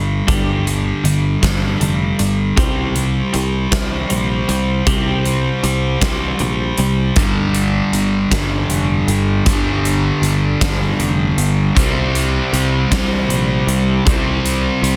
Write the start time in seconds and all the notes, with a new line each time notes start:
Already playing: G1 G2 D3 G3
0.27 G1 G2 D3 G3, kick, closed hi-hat
0.66 G2 D3, closed hi-hat
1.04 G1 G2 D3, closed hi-hat
1.42 G1 G2 D3 G3, kick, snare, closed hi-hat
1.80 F1 G2 D3, closed hi-hat
2.19 G1 G2 D3, closed hi-hat
2.56 C2 C3 G3 C4, kick, closed hi-hat
2.95 C3 G3, closed hi-hat
3.33 C2 C3 G3, closed hi-hat
3.72 C2 C3 G3 C4, kick, snare, closed hi-hat
4.10 A#1 C3 G3, closed hi-hat
4.48 C2 C3 G3, closed hi-hat
4.86 C2 C3 G3 C4, kick, closed hi-hat
5.25 C3 G3, closed hi-hat
5.63 C2 C3 G3, closed hi-hat
6.01 C2 C3 G3 C4, kick, snare, closed hi-hat
6.39 A#1 C3 G3, closed hi-hat
6.78 C2 C3 G3, closed hi-hat
7.16 G1 G2 D3 G3, kick, closed hi-hat
7.54 closed hi-hat
7.93 G1, closed hi-hat
8.31 G1 G2 D3 G3, kick, snare, closed hi-hat
8.69 F1, closed hi-hat
9.07 G1, closed hi-hat
9.46 G1 G2 D3 G3, kick, closed hi-hat
9.85 closed hi-hat
10.22 G1, closed hi-hat
10.61 G1 G2 D3 G3, kick, snare, closed hi-hat
10.99 F1, closed hi-hat
11.38 G1, closed hi-hat
11.76 C2 C3 G3 C4, kick, closed hi-hat
12.15 closed hi-hat
12.53 C2, closed hi-hat
12.91 C2 C3 G3 C4, kick, snare, closed hi-hat
13.29 A#1, closed hi-hat
13.67 C2, closed hi-hat
14.06 C2 C3 G3 C4, kick, closed hi-hat
14.46 closed hi-hat
14.82 C2, closed hi-hat